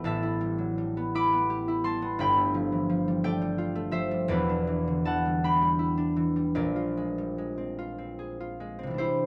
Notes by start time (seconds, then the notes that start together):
Already playing: A3 B3 E4 A4 B4 C5 G5
0.04 A1 A2 E5 A5
0.23 E4
0.41 G3
0.58 F#3
0.78 G3
0.97 B3
1.15 E4 B5 D6
1.32 B3
1.50 G4
1.68 E4
1.84 G3 A5 C6
2.02 B3
2.19 G1 G2 G5 B5
2.37 A3
2.54 F3
2.72 E3
2.89 F3
3.08 G3
3.24 A3 D5 G5
3.41 G3
3.58 F4
3.75 A3
3.91 F3 C5 E5
4.11 G3
4.28 E1 E2 B4 D5
4.49 D4
4.67 E3
4.87 D3
5.05 E3 F#5 A5
5.25 G3
5.44 D4 G5 B5
5.62 G3
5.79 E4
5.97 D4
6.16 E3
6.36 G3
6.55 A#1 A#2 A#4 D5
6.76 F4
6.97 G#3
7.18 G3
7.38 G#3
7.58 C4
7.79 F4
7.98 C4
8.19 G#4
8.40 F4
8.60 G#3
8.79 C4
8.83 C3 E3
8.91 G3 D4
8.98 E4 G4 C5